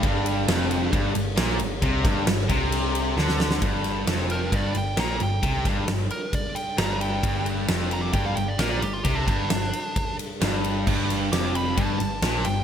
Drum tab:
CC |----------------|----------------|----------------|----------------|
RD |x-x-x-x-x-x-x-x-|x-x-x-x-x-x-----|x-x-x-x-x-x-x-x-|x-x-x-x-x-x-x-x-|
SD |----o-------o---|--o-o-------oooo|--o-o-------o---|--o-o-------o---|
BD |o-------o-------|o-o---o---------|o-------o-------|o-o-----o-------|

CC |----------------|----------------|x---------------|
RD |x-x-x-x-x-x-x-x-|x-x-x-x-x-x-x-x-|--x-x-x-x-x-x-x-|
SD |----o-------o---|----o-------o---|--o-o-------o---|
BD |o-------o-------|o-o-----o-------|o-------o-------|